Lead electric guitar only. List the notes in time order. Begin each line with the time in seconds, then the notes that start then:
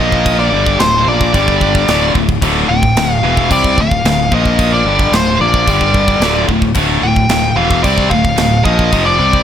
Already playing: D#5
0.39 D5
0.79 C5
1.08 D5
2.69 G5
3.13 F5
3.25 F5
3.52 D5
3.81 F5
4.35 D#5
4.73 D5
5.13 C5
5.41 D5
7.03 G5
7.57 F5
7.84 D5
8.10 F5
8.65 D#5
9.06 D5